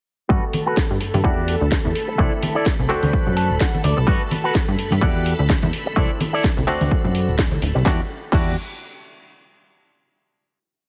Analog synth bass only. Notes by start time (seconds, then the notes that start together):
0.30 G2
0.91 G2
1.14 G2
1.24 E2
1.61 D2
1.85 E2
2.19 C2
2.80 C2
2.90 D2
3.03 D2
3.27 F#2
3.50 D1
3.84 D2
3.97 C2
4.08 G2
4.68 G2
4.92 G2
5.02 E2
5.39 D2
5.63 E2
5.97 C2
6.57 C2
6.68 D2
6.81 D2
7.04 F#2
7.28 D1
7.52 D2
7.62 D1
7.76 C2
7.86 E2
8.33 E2